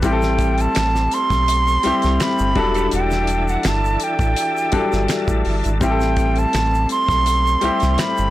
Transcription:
0.02 analog synth bass A1, grand piano G3 C4 E4 G4, tonewheel organ A3 C4, flute G5, kick, closed hi-hat, shaker
0.13 grand piano A4
0.22 snare, shaker
0.39 kick, closed hi-hat, shaker
0.58 flute A5, closed hi-hat, shaker
0.75 analog synth bass A1, finger snap, snare, closed hi-hat, shaker
0.95 snare, shaker
1.11 flute C6, closed hi-hat, shaker
1.30 analog synth bass B1, kick, snare, closed hi-hat, shaker
1.48 closed hi-hat, shaker
1.67 shaker
1.83 analog synth bass C2, grand piano G3 C4 E4 G4, closed hi-hat
2.02 analog synth bass C2, snare, closed hi-hat, shaker
2.16 flute C6
2.20 flute B5, finger snap, snare, closed hi-hat, shaker
2.39 analog synth bass G1, shaker
2.55 analog synth bass E1, tonewheel organ E3 D4 E4 A4, grand piano F#3 G3 D4 A4, kick, closed hi-hat
2.74 clean electric guitar D4 G4 A4, closed hi-hat, shaker
2.91 analog synth bass E1, flute G5, closed hi-hat, shaker
3.11 snare, shaker
3.27 closed hi-hat, shaker
3.48 flute F#5, shaker
3.63 analog synth bass G1, flute A5, finger snap, snare, closed hi-hat, shaker
3.85 shaker
4.00 flute G5, closed hi-hat, shaker
4.19 analog synth bass A1, kick, closed hi-hat, shaker
4.36 closed hi-hat, shaker
4.57 shaker
4.72 analog synth bass G1, grand piano F#3 G3 D4 A4, kick, closed hi-hat
4.92 analog synth bass G1, snare, shaker
5.08 finger snap, snare, closed hi-hat, shaker
5.28 analog synth bass A1, kick, shaker
5.45 analog synth bass G1, open hi-hat
5.64 analog synth bass G#1, closed hi-hat, shaker
5.80 analog synth bass A1, grand piano G3 C4 E4 G4, tonewheel organ A3 C4, flute G5, kick, closed hi-hat, shaker
5.91 grand piano A4
6.00 snare, shaker
6.17 kick, closed hi-hat, shaker
6.36 flute A5, closed hi-hat, shaker
6.53 analog synth bass A1, finger snap, snare, closed hi-hat, shaker
6.74 shaker
6.89 flute C6, closed hi-hat, shaker
7.08 analog synth bass B1, kick, snare, closed hi-hat, shaker
7.26 closed hi-hat, shaker
7.47 shaker
7.61 analog synth bass C2, grand piano G3 C4 E4 G4, closed hi-hat
7.80 analog synth bass C2, snare, closed hi-hat, shaker
7.94 flute C6, closed hi-hat
7.99 flute B5, finger snap, snare, shaker
8.18 analog synth bass G1, shaker

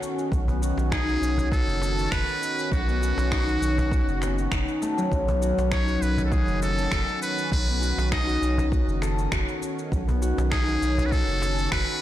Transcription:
Already playing: analog synth pad D#3 C#4 F#4, harp B3 C#4 D#4 F#4 A4
0.02 cajon slap, cabasa
0.19 cabasa
0.32 analog synth bass B1, kick, cabasa
0.48 harp B3, cajon bass, cabasa
0.62 harp F#4, cabasa
0.78 analog synth bass B1, cajon slap, cabasa
0.92 harp D#4, muted trumpet G#4, finger snap, kick, cabasa
1.09 cabasa
1.22 analog synth bass B1, harp C#4, cabasa
1.38 cajon bass, cabasa
1.52 harp F#4, muted trumpet A4, kick, cajon slap, cabasa
1.68 analog synth bass F#1, cabasa
1.81 harp A4, cajon slap, cabasa
1.99 cabasa
2.12 analog synth bass F#1, muted trumpet B4, finger snap, kick, cabasa
2.28 cabasa
2.43 cabasa
2.59 cabasa
2.72 analog synth bass B1, muted trumpet F#4, kick, cabasa
2.87 harp B3, cabasa
3.02 harp F#4, cabasa
3.18 analog synth bass B1, cajon slap, cabasa
3.31 harp D#4, finger snap, kick, cabasa
3.48 cabasa
3.62 analog synth bass B1, harp C#4, cabasa
3.78 cajon bass, cabasa
3.91 harp F#4, kick, cabasa
4.07 analog synth bass F#1, cabasa
4.22 harp B3, finger snap, cajon slap, cabasa
4.38 cabasa
4.52 analog synth bass F#1, harp D#4, finger snap, kick, cabasa
4.68 cabasa
4.82 harp A3, cajon slap, cabasa
4.97 harp F#3, cabasa
5.12 analog synth bass B1, kick, cabasa
5.27 harp B3, cajon bass, cabasa
5.42 harp F#4, cabasa
5.58 analog synth bass B1, cajon slap, cabasa
5.72 harp D#4, muted trumpet C#5, finger snap, kick, cabasa
5.87 harp F#4, cabasa
6.02 analog synth bass B1, harp C#4, muted trumpet B4, cabasa
6.18 cajon bass, cabasa
6.25 muted trumpet A4
6.32 harp F#4, muted trumpet G#4, kick, cajon slap, cabasa
6.47 analog synth bass F#1, cabasa
6.62 harp A4, muted trumpet A4, cajon slap, cabasa
6.78 cabasa
6.92 analog synth bass F#1, harp F#4, finger snap, kick, cabasa
7.08 cabasa
7.22 muted trumpet B4, cabasa
7.38 cabasa
7.52 analog synth bass B1, muted trumpet B4, kick, cabasa
7.68 harp B3, cabasa
7.82 harp F#4, cabasa
7.98 analog synth bass B1, cajon slap, cabasa
8.12 harp D#4, muted trumpet D#5, finger snap, kick, cabasa
8.27 harp F#4, cabasa
8.41 analog synth bass B1, harp C#4, cabasa
8.58 cajon bass, cabasa
8.72 harp F#4, kick, cabasa
8.88 analog synth bass F#1, cabasa
9.02 harp A4, finger snap, cajon slap, cabasa
9.19 cabasa
9.32 analog synth bass F#1, harp F#4, finger snap, kick, cabasa
9.49 cabasa
9.61 cajon slap, cabasa
9.79 cabasa
9.92 analog synth bass B1, kick, cabasa
10.08 harp B3, cajon bass, cabasa
10.22 harp F#4, cabasa
10.38 analog synth bass B1, cajon slap, cabasa
10.52 harp D#4, muted trumpet G#4, finger snap, kick, cabasa
10.68 harp F#4, cabasa
10.82 analog synth bass B1, harp C#4, cabasa
10.98 cajon bass, cabasa
11.06 muted trumpet B4
11.12 harp F#4, muted trumpet A4, kick, cajon slap, cabasa
11.28 analog synth bass F#1, cabasa
11.42 harp A4, cajon slap, cabasa
11.59 cabasa
11.72 analog synth bass F#1, harp F#4, muted trumpet B4, finger snap, kick, cabasa
11.89 cabasa

